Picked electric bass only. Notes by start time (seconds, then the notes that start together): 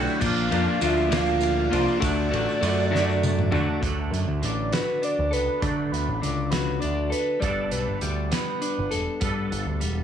0.22 A#1
0.52 F2
0.82 D2
1.72 C2
2.02 D2
2.33 A1
2.62 F#2
3.53 D3
3.82 D2
4.12 F#2
4.28 D2
4.43 A1
5.19 D2
5.34 C#2
5.63 D3
5.93 D2
6.08 A1
6.23 C#2
6.84 D2
7.43 G1
7.72 B1
7.88 G1
8.02 D2
8.78 G1
8.93 E1
9.22 G2
9.52 G1
9.66 D2
9.82 E1